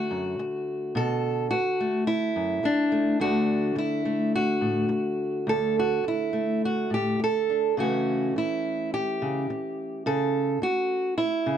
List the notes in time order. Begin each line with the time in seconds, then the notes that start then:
Already playing: D3 A3 D4 F#4
0.11 F#2
0.39 muted steel-string acoustic guitar stroke
0.95 B2 A4
1.51 F#4, muted steel-string acoustic guitar stroke
1.80 A3
2.07 E4
2.36 F#2
2.63 D4, muted steel-string acoustic guitar stroke
2.92 A3
3.20 D2 D3 A3 D4 F#4
3.75 E4, muted steel-string acoustic guitar stroke
4.05 A3
4.36 F#4
4.61 A2
4.89 muted steel-string acoustic guitar stroke
5.47 D2 A4
5.79 F#4
6.04 muted steel-string acoustic guitar stroke
6.08 E4
6.33 A3
6.65 F#4
6.90 A2 G4
7.19 muted steel-string acoustic guitar stroke
7.24 A4
7.50 D4
7.77 C#3 E3 A3 C#4 F#4
8.36 E4, muted steel-string acoustic guitar stroke
8.94 G4
9.22 C#3
9.50 muted steel-string acoustic guitar stroke
10.06 C#3 A4
10.62 F#4, muted steel-string acoustic guitar stroke
11.18 E4
11.46 C#3